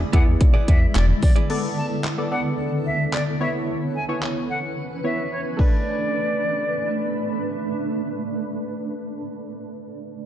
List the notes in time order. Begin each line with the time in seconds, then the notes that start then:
Already playing: D3 G#3 E4
0.00 muted clean electric guitar stroke
0.13 E2 B3 E4 G#4 D5 F#5, kick, closed hi-hat
0.27 E2, muted clean electric guitar stroke
0.40 B1, muted clean electric guitar stroke, kick, closed hi-hat
0.54 B3 E4 G#4 D5
0.67 E2 B3 E4 G#4 D5 E5, kick, closed hi-hat
0.81 muted clean electric guitar stroke
0.95 E1 B3 E4 G#4 D5, clap, closed hi-hat
1.09 muted clean electric guitar stroke
1.22 E2 D5, muted clean electric guitar stroke, kick, open hi-hat
1.36 B3 E4 G#4 D5, closed hi-hat
1.50 D3 B3 A4 D5, crash
1.77 A5
2.04 clap
2.18 B3 A4 D5
2.31 B3 A4 D5 F#5
2.86 E5
3.13 D5, clap
3.40 E3 B3 C#4 E4 B4 C#5 E5
3.96 G#5
4.08 B3 E4 C#5
4.23 clap
4.50 F#5
5.04 B3 E4 C#5 E5
5.32 C#5
5.57 A3 D4 B4 D5, kick, crash
5.61 B4